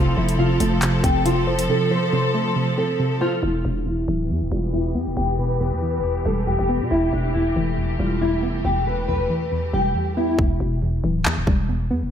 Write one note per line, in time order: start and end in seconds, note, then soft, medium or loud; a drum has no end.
0.00 0.16 F1 loud
0.00 0.37 C3 medium
0.00 3.40 F3 medium
0.00 3.39 C4 medium
0.00 0.16 F4 loud
0.00 3.40 A4 medium
0.17 0.59 F1 loud
0.17 1.26 F3 medium
0.17 0.37 E4 medium
0.29 closed hi-hat medium
0.38 0.81 C3 medium
0.38 1.00 F4 medium
0.60 1.02 F1 loud
0.60 1.69 A3 medium
0.60 closed hi-hat medium
0.82 1.24 C3 medium
0.82 clap loud
0.82 closed hi-hat loud
1.04 1.69 F1 loud
1.04 2.12 C4 medium
1.04 1.24 G4 medium
1.04 kick loud
1.04 closed hi-hat medium
1.25 1.68 C3 medium
1.25 1.46 F4 medium
1.25 closed hi-hat medium
1.47 2.56 C5 medium
1.59 closed hi-hat medium
1.69 2.11 C3 medium
1.69 1.90 A4 medium
1.91 2.99 F3 loud
1.91 2.11 C5 medium
2.13 2.55 C3 medium
2.13 2.74 C5 medium
2.34 3.43 A3 medium
2.56 2.98 C3 medium
2.78 3.43 C4 medium
2.78 3.19 A4 medium
3.00 3.43 C3 medium
3.21 3.42 F4 medium
3.21 3.43 C5 medium
3.43 3.64 E1 loud
3.43 3.85 E2 medium
3.43 10.35 E3 medium
3.43 6.87 B3 medium
3.43 3.63 E4 loud
3.43 10.35 G4 medium
3.65 4.06 E1 loud
3.65 4.73 B2 medium
3.65 3.85 D4 medium
3.86 4.29 E2 medium
3.86 4.47 E4 medium
4.08 4.31 D1 loud
4.08 5.17 E3 medium
4.30 4.72 E2 medium
4.30 4.43 E2 loud
4.41 4.51 D1 loud
4.51 4.97 E1 loud
4.51 5.60 G3 medium
4.51 4.72 F4 medium
4.73 5.16 E2 medium
4.73 4.94 E4 medium
4.95 5.08 E2 loud
4.95 6.04 B3 medium
5.07 5.16 E1 loud
5.17 5.73 E1 loud
5.17 5.59 E2 medium
5.17 5.37 G4 medium
5.39 6.47 B2 medium
5.39 5.59 B4 medium
5.60 6.03 E2 medium
5.60 6.22 B4 medium
5.72 6.00 E2 loud
5.82 6.91 E3 medium
5.99 6.24 E1 loud
6.04 6.46 E2 medium
6.25 6.57 E1 loud
6.25 7.34 G3 medium
6.25 6.46 A4 medium
6.47 6.90 E2 medium
6.47 6.68 G4 medium
6.59 6.82 E1 loud
6.69 7.78 B3 medium
6.81 6.90 B2 loud
6.91 7.12 E1 loud
6.91 7.33 E2 medium
6.91 10.35 A3 medium
6.91 7.11 E4 loud
7.13 7.54 E1 loud
7.13 8.21 B2 medium
7.13 7.33 D4 medium
7.34 7.76 E2 medium
7.34 7.95 E4 loud
7.56 7.98 E1 loud
7.56 8.65 E3 medium
7.78 8.20 E2 medium
7.99 8.44 E1 loud
7.99 9.08 G3 medium
7.99 8.20 F4 medium
8.21 8.63 E2 medium
8.21 8.42 E4 medium
8.43 8.64 F1 loud
8.43 9.52 B3 medium
8.65 9.10 E1 loud
8.65 9.07 E2 medium
8.65 8.85 G4 loud
8.87 9.95 B2 medium
8.87 9.07 B4 medium
9.08 9.21 B1 loud
9.08 9.51 E2 medium
9.08 9.69 B4 medium
9.20 9.29 E1 loud
9.30 10.39 E3 medium
9.52 9.94 E2 medium
9.73 9.94 E1 loud
9.73 10.39 G3 medium
9.73 10.14 G4 medium
9.95 10.37 E2 medium
10.17 10.39 B3 loud
10.17 10.37 E4 medium
10.38 10.59 E1 loud
10.38 10.81 E2 medium
10.38 kick loud
10.60 11.02 E1 loud
10.60 11.69 B2 medium
10.82 11.24 E2 medium
11.04 11.27 D1 loud
11.04 12.11 E3 medium
11.25 11.38 E2 loud
11.25 11.68 E2 medium
11.25 clap loud
11.37 11.47 D1 loud
11.47 11.92 E1 loud
11.47 12.11 G3 medium
11.47 kick loud
11.69 12.11 E2 medium
11.91 12.04 E2 loud
11.91 12.11 B3 medium
12.02 12.11 E1 medium